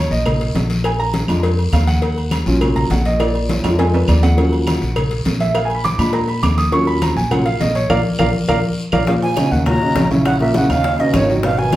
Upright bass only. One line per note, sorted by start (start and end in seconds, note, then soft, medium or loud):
0.11 0.52 A#1 loud
0.55 1.23 A#1 medium
1.28 1.70 F2 medium
1.72 2.41 D#2 medium
2.46 2.88 A#1 loud
2.91 3.59 A#1 loud
3.64 4.05 F2 medium
4.08 4.76 D#2 medium
4.81 5.23 A#1 loud
5.26 5.94 A#1 medium
5.98 6.40 A#2 medium
6.42 7.11 D#2 loud
7.16 7.57 A#1 medium
7.60 7.88 A#1 loud
7.89 8.01 A#1 loud
8.19 8.30 A#1 loud
8.49 8.60 A#1 medium
8.93 9.04 A#1 medium
9.51 9.93 D#2 medium
9.95 10.64 A#1 medium
10.69 11.11 D#2 medium
11.14 11.76 G#1 medium